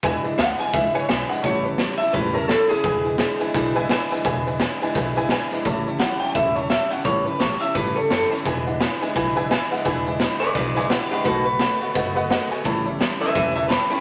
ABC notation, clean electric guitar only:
X:1
M:4/4
L:1/8
Q:"Swing" 1/4=171
K:Emix
V:1 name="Clean electric guitar"
z2 f g e c e f | c B c e B ^A =A G- | G4- G z3 | z8 |
z2 f =g e c e f | c B c e B A A B- | B4- B z3 | z3 [Bd] [Bd] [Bd] [=GB] [GB] |
[FB] B6 z | z3 [Be] [Be] [Be] [=GB] [GB] |]